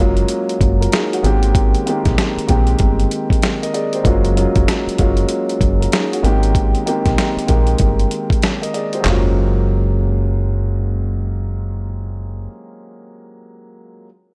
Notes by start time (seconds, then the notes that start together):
Already playing: F#3
0.00 F#1 G#3 A#3 C#4 F4
0.17 closed hi-hat
0.28 closed hi-hat
0.49 closed hi-hat
0.61 F#1, kick, closed hi-hat
0.81 F4 A#4, closed hi-hat
0.92 D#4 G#4, snare, closed hi-hat
1.12 C#4 F#4, closed hi-hat
1.23 G#1 D#3 G#3 A#3 C4 G4, closed hi-hat
1.43 closed hi-hat
1.55 kick, closed hi-hat
1.75 closed hi-hat
1.86 D#3 G#3 A#3 C4 G4, closed hi-hat
2.05 A#1, kick, snare, closed hi-hat
2.18 snare, closed hi-hat
2.37 muted fingered electric bass stroke, closed hi-hat
2.47 A#1 D#3 G#3 A#3 C4 G4, kick, closed hi-hat
2.67 closed hi-hat
2.79 G1, kick, closed hi-hat
3.00 closed hi-hat
3.11 closed hi-hat
3.30 kick, closed hi-hat
3.42 snare, closed hi-hat
3.62 A#4 D#5, closed hi-hat
3.74 G#4 D5, closed hi-hat
3.93 G4 C5, closed hi-hat
4.03 F#1 F#3 G#3 A#3 C#4 F4, kick, closed hi-hat
4.25 closed hi-hat
4.36 F#3 G#3 A#3 C#4 F4, closed hi-hat
4.56 F1, kick, closed hi-hat
4.68 snare, closed hi-hat
4.87 muted fingered electric bass stroke, closed hi-hat
4.98 F#1 F#3 G#3 A#3 C#4 F4, kick, closed hi-hat
5.17 closed hi-hat
5.29 closed hi-hat
5.49 closed hi-hat
5.61 F#1, kick, closed hi-hat
5.80 F4 A#4, closed hi-hat
5.92 D#4 G#4, snare, closed hi-hat
6.12 C#4 F#4, closed hi-hat
6.23 G#1 D#3 G#3 A#3 C4 G4, closed hi-hat
6.43 closed hi-hat
6.55 kick, closed hi-hat
6.75 closed hi-hat
6.86 D#3 G#3 A#3 C4 G4, closed hi-hat
7.06 A#1, kick, snare, closed hi-hat
7.18 snare, closed hi-hat
7.37 muted fingered electric bass stroke, closed hi-hat
7.47 A#1 D#3 G#3 A#3 C4 G4, kick, closed hi-hat
7.67 closed hi-hat
7.78 G1, kick, closed hi-hat
7.99 closed hi-hat
8.11 closed hi-hat
8.30 kick, closed hi-hat
8.42 snare, closed hi-hat
8.62 A#4 D#5, closed hi-hat
8.74 G#4 D5, closed hi-hat
8.93 G4 C5, closed hi-hat
9.00 F#3 G#3
9.05 F#1 A#3 C#4, snare, clap, floor tom
9.10 F4